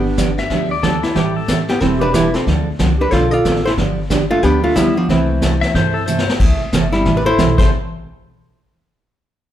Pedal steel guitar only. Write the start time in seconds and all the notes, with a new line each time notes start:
0.39 E5
0.71 D5
0.83 A4
1.03 E4
1.16 G4
1.36 A4
5.61 E5
5.75 C5
5.94 A4
6.06 C5
7.58 C5